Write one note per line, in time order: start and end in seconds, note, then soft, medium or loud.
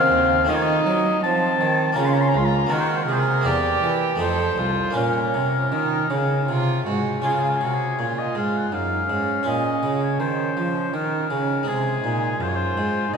0.00 0.11 D#3 medium
0.00 0.44 A#3 medium
0.00 0.45 C4 medium
0.00 0.48 C4 medium
0.00 0.46 F#4 medium
0.00 0.51 F5 loud
0.11 0.49 D#2 medium
0.11 0.45 D#2 medium
0.44 0.85 D#3 medium
0.44 0.82 A3 medium
0.44 1.92 C4 medium
0.44 1.93 F4 medium
0.48 0.82 D#3 medium
0.48 1.22 D#4 medium
0.48 0.56 D#5 medium
0.55 0.64 C#5 medium
0.62 1.22 D#5 medium
0.86 1.23 F#3 medium
0.86 1.20 F#3 medium
1.23 1.59 F3 medium
1.23 1.57 F3 medium
1.23 1.96 C4 medium
1.23 1.98 A5 loud
1.61 1.94 D#3 medium
1.61 1.96 D#3 medium
1.93 2.36 C#3 medium
1.93 2.65 A#3 medium
1.93 2.67 C#4 medium
1.93 2.68 F4 medium
1.93 2.07 A#5 medium
1.97 2.30 C#3 medium
1.97 2.35 C#4 medium
2.05 2.15 C6 medium
2.14 2.23 A#5 medium
2.21 2.30 C6 medium
2.29 2.39 A#5 medium
2.34 2.68 C#2 medium
2.34 2.70 C#2 medium
2.34 2.70 F4 medium
2.34 2.46 C6 medium
2.45 2.73 A#5 loud
2.66 3.07 D#3 medium
2.66 3.40 A#3 soft
2.66 3.42 C4 medium
2.66 3.43 F#4 medium
2.71 3.04 D#3 medium
2.71 3.07 F#4 medium
2.71 2.81 A#4 medium
2.79 2.89 C5 medium
2.87 2.97 A#4 medium
2.95 3.04 C5 medium
3.03 3.13 A#4 medium
3.08 3.46 C3 medium
3.08 3.42 C3 medium
3.08 3.47 G#4 medium
3.12 3.20 C5 medium
3.19 3.45 A#4 medium
3.41 3.82 E2 medium
3.41 4.16 A#3 soft
3.41 4.16 C4 soft
3.41 4.17 G4 soft
3.46 3.79 E2 medium
3.46 4.20 G4 medium
3.46 3.93 D5 loud
3.82 4.19 E3 medium
3.82 4.17 E3 medium
4.16 4.57 F2 medium
4.16 4.91 A3 soft
4.16 4.92 C4 soft
4.16 4.93 D#4 soft
4.20 4.54 F2 medium
4.20 4.60 A4 medium
4.20 4.96 C5 medium
4.57 4.95 C2 medium
4.57 4.92 C2 medium
4.57 4.97 F4 medium
4.90 7.17 A#3 soft
4.90 7.18 C#4 soft
4.90 7.19 F4 soft
4.95 5.30 A#2 medium
4.95 5.36 A#2 medium
4.95 5.65 C#4 medium
4.95 6.86 A#4 medium
5.34 5.69 C3 medium
5.34 5.74 C3 medium
5.71 6.06 D#3 soft
5.71 6.11 D#3 medium
5.71 6.11 D#4 medium
6.10 6.44 C#3 medium
6.10 6.48 C#3 medium
6.10 6.46 C#4 medium
6.47 6.83 C3 soft
6.47 6.86 C3 medium
6.47 6.85 F4 medium
6.86 7.20 G#2 soft
6.86 7.24 G#2 medium
6.86 7.21 F#4 medium
7.22 7.58 C#3 soft
7.22 7.59 C#3 medium
7.22 9.41 C#4 soft
7.22 7.58 F4 soft
7.22 9.42 F4 soft
7.22 7.34 G#4 medium
7.32 7.41 A#4 medium
7.40 7.51 G#4 medium
7.49 7.59 A#4 medium
7.57 7.95 C3 soft
7.57 7.97 F#4 soft
7.57 7.67 G#4 medium
7.63 8.01 C3 soft
7.63 7.75 A#4 soft
7.74 7.99 G#4 medium
7.98 8.32 A#2 soft
7.98 8.36 A#2 medium
7.98 8.74 F4 soft
7.98 8.20 C#5 medium
8.18 8.36 D#5 medium
8.35 8.69 G#2 soft
8.35 8.72 G#2 soft
8.35 8.58 F5 medium
8.56 8.75 F#5 medium
8.72 9.06 F#2 soft
8.72 9.09 F#2 medium
8.72 9.09 D#4 medium
8.72 9.49 F5 medium
9.09 9.42 G#2 soft
9.09 9.46 G#2 soft
9.09 10.96 C#4 medium
9.43 9.79 A#2 soft
9.43 11.62 C#4 soft
9.43 11.62 F4 soft
9.47 9.83 A#2 medium
9.47 10.02 D#5 medium
9.83 10.16 C#3 soft
9.83 10.22 C#3 medium
10.02 10.19 C#5 medium
10.20 10.53 D#3 soft
10.20 10.57 D#3 medium
10.20 10.92 C5 medium
10.57 10.90 F3 soft
10.57 10.93 F3 medium
10.94 11.27 D#3 soft
10.94 11.30 D#3 medium
10.94 11.30 D#4 medium
10.94 11.70 A#4 medium
11.30 11.63 C#3 soft
11.30 11.67 C#3 medium
11.30 11.66 C#4 medium
11.63 13.17 G#3 soft
11.63 12.02 C4 soft
11.63 13.17 D#4 soft
11.68 12.03 C3 medium
11.68 12.01 C3 soft
11.68 12.43 G#4 medium
12.03 12.37 A#2 soft
12.03 12.40 A#2 medium
12.03 12.39 D#4 medium
12.39 12.76 F#2 medium
12.39 12.73 F#2 soft
12.39 13.11 F4 medium
12.39 12.50 C5 medium
12.49 12.56 C#5 medium
12.55 13.15 C5 medium
12.77 13.12 G#2 medium
12.77 13.10 G#2 soft
13.12 13.17 A#2 medium
13.12 13.17 A#2 soft
13.12 13.17 D#4 medium
13.12 13.17 D#5 medium